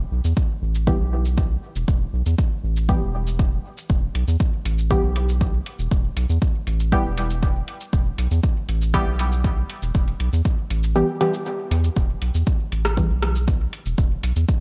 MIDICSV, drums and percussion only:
0, 0, Header, 1, 2, 480
1, 0, Start_track
1, 0, Key_signature, 1, "minor"
1, 0, Tempo, 504202
1, 1791, Time_signature, 4, 2, 24, 8
1, 13900, End_track
2, 0, Start_track
2, 0, Title_t, "Drums"
2, 233, Note_on_c, 9, 69, 49
2, 329, Note_off_c, 9, 69, 0
2, 350, Note_on_c, 9, 69, 38
2, 351, Note_on_c, 9, 36, 127
2, 445, Note_off_c, 9, 69, 0
2, 446, Note_off_c, 9, 36, 0
2, 714, Note_on_c, 9, 69, 50
2, 809, Note_off_c, 9, 69, 0
2, 830, Note_on_c, 9, 36, 121
2, 830, Note_on_c, 9, 69, 39
2, 925, Note_off_c, 9, 69, 0
2, 926, Note_off_c, 9, 36, 0
2, 1193, Note_on_c, 9, 69, 49
2, 1289, Note_off_c, 9, 69, 0
2, 1310, Note_on_c, 9, 36, 121
2, 1310, Note_on_c, 9, 69, 37
2, 1405, Note_off_c, 9, 36, 0
2, 1405, Note_off_c, 9, 69, 0
2, 1673, Note_on_c, 9, 69, 48
2, 1769, Note_off_c, 9, 69, 0
2, 1790, Note_on_c, 9, 36, 124
2, 1790, Note_on_c, 9, 69, 38
2, 1885, Note_off_c, 9, 36, 0
2, 1885, Note_off_c, 9, 69, 0
2, 2153, Note_on_c, 9, 69, 48
2, 2249, Note_off_c, 9, 69, 0
2, 2270, Note_on_c, 9, 36, 127
2, 2270, Note_on_c, 9, 69, 37
2, 2365, Note_off_c, 9, 36, 0
2, 2365, Note_off_c, 9, 69, 0
2, 2633, Note_on_c, 9, 69, 46
2, 2728, Note_off_c, 9, 69, 0
2, 2750, Note_on_c, 9, 36, 117
2, 2750, Note_on_c, 9, 69, 37
2, 2845, Note_off_c, 9, 36, 0
2, 2845, Note_off_c, 9, 69, 0
2, 3113, Note_on_c, 9, 69, 48
2, 3209, Note_off_c, 9, 69, 0
2, 3230, Note_on_c, 9, 36, 117
2, 3230, Note_on_c, 9, 69, 37
2, 3325, Note_off_c, 9, 36, 0
2, 3325, Note_off_c, 9, 69, 0
2, 3594, Note_on_c, 9, 69, 47
2, 3689, Note_off_c, 9, 69, 0
2, 3710, Note_on_c, 9, 36, 116
2, 3710, Note_on_c, 9, 69, 35
2, 3805, Note_off_c, 9, 36, 0
2, 3805, Note_off_c, 9, 69, 0
2, 3950, Note_on_c, 9, 42, 79
2, 4046, Note_off_c, 9, 42, 0
2, 4074, Note_on_c, 9, 69, 46
2, 4169, Note_off_c, 9, 69, 0
2, 4190, Note_on_c, 9, 36, 120
2, 4190, Note_on_c, 9, 69, 37
2, 4285, Note_off_c, 9, 36, 0
2, 4285, Note_off_c, 9, 69, 0
2, 4431, Note_on_c, 9, 42, 68
2, 4526, Note_off_c, 9, 42, 0
2, 4554, Note_on_c, 9, 69, 47
2, 4649, Note_off_c, 9, 69, 0
2, 4670, Note_on_c, 9, 36, 111
2, 4670, Note_on_c, 9, 69, 38
2, 4765, Note_off_c, 9, 69, 0
2, 4766, Note_off_c, 9, 36, 0
2, 4910, Note_on_c, 9, 42, 80
2, 5005, Note_off_c, 9, 42, 0
2, 5034, Note_on_c, 9, 69, 45
2, 5129, Note_off_c, 9, 69, 0
2, 5150, Note_on_c, 9, 36, 108
2, 5150, Note_on_c, 9, 69, 34
2, 5246, Note_off_c, 9, 36, 0
2, 5246, Note_off_c, 9, 69, 0
2, 5390, Note_on_c, 9, 42, 74
2, 5486, Note_off_c, 9, 42, 0
2, 5514, Note_on_c, 9, 69, 47
2, 5609, Note_off_c, 9, 69, 0
2, 5630, Note_on_c, 9, 36, 112
2, 5631, Note_on_c, 9, 69, 38
2, 5726, Note_off_c, 9, 36, 0
2, 5726, Note_off_c, 9, 69, 0
2, 5870, Note_on_c, 9, 42, 74
2, 5965, Note_off_c, 9, 42, 0
2, 5994, Note_on_c, 9, 69, 45
2, 6089, Note_off_c, 9, 69, 0
2, 6110, Note_on_c, 9, 36, 115
2, 6111, Note_on_c, 9, 69, 37
2, 6206, Note_off_c, 9, 36, 0
2, 6206, Note_off_c, 9, 69, 0
2, 6350, Note_on_c, 9, 42, 62
2, 6445, Note_off_c, 9, 42, 0
2, 6474, Note_on_c, 9, 69, 45
2, 6569, Note_off_c, 9, 69, 0
2, 6590, Note_on_c, 9, 36, 115
2, 6591, Note_on_c, 9, 69, 35
2, 6686, Note_off_c, 9, 36, 0
2, 6686, Note_off_c, 9, 69, 0
2, 6830, Note_on_c, 9, 42, 76
2, 6925, Note_off_c, 9, 42, 0
2, 6954, Note_on_c, 9, 69, 46
2, 7049, Note_off_c, 9, 69, 0
2, 7070, Note_on_c, 9, 36, 105
2, 7070, Note_on_c, 9, 69, 35
2, 7165, Note_off_c, 9, 36, 0
2, 7166, Note_off_c, 9, 69, 0
2, 7310, Note_on_c, 9, 42, 69
2, 7406, Note_off_c, 9, 42, 0
2, 7433, Note_on_c, 9, 69, 47
2, 7529, Note_off_c, 9, 69, 0
2, 7550, Note_on_c, 9, 36, 113
2, 7550, Note_on_c, 9, 69, 36
2, 7645, Note_off_c, 9, 36, 0
2, 7646, Note_off_c, 9, 69, 0
2, 7790, Note_on_c, 9, 42, 72
2, 7885, Note_off_c, 9, 42, 0
2, 7914, Note_on_c, 9, 69, 47
2, 8009, Note_off_c, 9, 69, 0
2, 8030, Note_on_c, 9, 36, 114
2, 8030, Note_on_c, 9, 69, 38
2, 8125, Note_off_c, 9, 36, 0
2, 8125, Note_off_c, 9, 69, 0
2, 8270, Note_on_c, 9, 42, 62
2, 8365, Note_off_c, 9, 42, 0
2, 8393, Note_on_c, 9, 69, 46
2, 8489, Note_off_c, 9, 69, 0
2, 8510, Note_on_c, 9, 36, 111
2, 8510, Note_on_c, 9, 69, 38
2, 8605, Note_off_c, 9, 36, 0
2, 8605, Note_off_c, 9, 69, 0
2, 8750, Note_on_c, 9, 42, 80
2, 8846, Note_off_c, 9, 42, 0
2, 8874, Note_on_c, 9, 69, 47
2, 8969, Note_off_c, 9, 69, 0
2, 8990, Note_on_c, 9, 36, 110
2, 8991, Note_on_c, 9, 69, 36
2, 9085, Note_off_c, 9, 36, 0
2, 9086, Note_off_c, 9, 69, 0
2, 9230, Note_on_c, 9, 42, 73
2, 9326, Note_off_c, 9, 42, 0
2, 9354, Note_on_c, 9, 69, 47
2, 9449, Note_off_c, 9, 69, 0
2, 9470, Note_on_c, 9, 36, 118
2, 9470, Note_on_c, 9, 69, 40
2, 9565, Note_off_c, 9, 36, 0
2, 9565, Note_off_c, 9, 69, 0
2, 9593, Note_on_c, 9, 42, 31
2, 9689, Note_off_c, 9, 42, 0
2, 9710, Note_on_c, 9, 42, 73
2, 9805, Note_off_c, 9, 42, 0
2, 9834, Note_on_c, 9, 69, 48
2, 9929, Note_off_c, 9, 69, 0
2, 9950, Note_on_c, 9, 36, 111
2, 9950, Note_on_c, 9, 69, 38
2, 10046, Note_off_c, 9, 36, 0
2, 10046, Note_off_c, 9, 69, 0
2, 10190, Note_on_c, 9, 42, 65
2, 10285, Note_off_c, 9, 42, 0
2, 10313, Note_on_c, 9, 69, 51
2, 10409, Note_off_c, 9, 69, 0
2, 10430, Note_on_c, 9, 69, 40
2, 10525, Note_off_c, 9, 69, 0
2, 10670, Note_on_c, 9, 42, 80
2, 10765, Note_off_c, 9, 42, 0
2, 10794, Note_on_c, 9, 69, 48
2, 10889, Note_off_c, 9, 69, 0
2, 10910, Note_on_c, 9, 69, 40
2, 11006, Note_off_c, 9, 69, 0
2, 11151, Note_on_c, 9, 42, 71
2, 11246, Note_off_c, 9, 42, 0
2, 11274, Note_on_c, 9, 69, 47
2, 11369, Note_off_c, 9, 69, 0
2, 11390, Note_on_c, 9, 36, 118
2, 11391, Note_on_c, 9, 69, 41
2, 11486, Note_off_c, 9, 36, 0
2, 11486, Note_off_c, 9, 69, 0
2, 11630, Note_on_c, 9, 42, 81
2, 11726, Note_off_c, 9, 42, 0
2, 11754, Note_on_c, 9, 69, 51
2, 11849, Note_off_c, 9, 69, 0
2, 11870, Note_on_c, 9, 36, 124
2, 11871, Note_on_c, 9, 69, 41
2, 11966, Note_off_c, 9, 36, 0
2, 11966, Note_off_c, 9, 69, 0
2, 12110, Note_on_c, 9, 42, 68
2, 12205, Note_off_c, 9, 42, 0
2, 12233, Note_on_c, 9, 37, 83
2, 12233, Note_on_c, 9, 69, 48
2, 12328, Note_off_c, 9, 37, 0
2, 12328, Note_off_c, 9, 69, 0
2, 12350, Note_on_c, 9, 36, 120
2, 12350, Note_on_c, 9, 69, 39
2, 12445, Note_off_c, 9, 36, 0
2, 12445, Note_off_c, 9, 69, 0
2, 12590, Note_on_c, 9, 37, 61
2, 12590, Note_on_c, 9, 42, 83
2, 12685, Note_off_c, 9, 37, 0
2, 12685, Note_off_c, 9, 42, 0
2, 12714, Note_on_c, 9, 69, 50
2, 12809, Note_off_c, 9, 69, 0
2, 12830, Note_on_c, 9, 36, 113
2, 12830, Note_on_c, 9, 69, 41
2, 12925, Note_off_c, 9, 69, 0
2, 12926, Note_off_c, 9, 36, 0
2, 13070, Note_on_c, 9, 42, 75
2, 13165, Note_off_c, 9, 42, 0
2, 13193, Note_on_c, 9, 69, 51
2, 13289, Note_off_c, 9, 69, 0
2, 13310, Note_on_c, 9, 36, 125
2, 13310, Note_on_c, 9, 69, 40
2, 13405, Note_off_c, 9, 69, 0
2, 13406, Note_off_c, 9, 36, 0
2, 13550, Note_on_c, 9, 42, 83
2, 13646, Note_off_c, 9, 42, 0
2, 13674, Note_on_c, 9, 69, 52
2, 13769, Note_off_c, 9, 69, 0
2, 13790, Note_on_c, 9, 36, 123
2, 13790, Note_on_c, 9, 69, 40
2, 13885, Note_off_c, 9, 36, 0
2, 13886, Note_off_c, 9, 69, 0
2, 13900, End_track
0, 0, End_of_file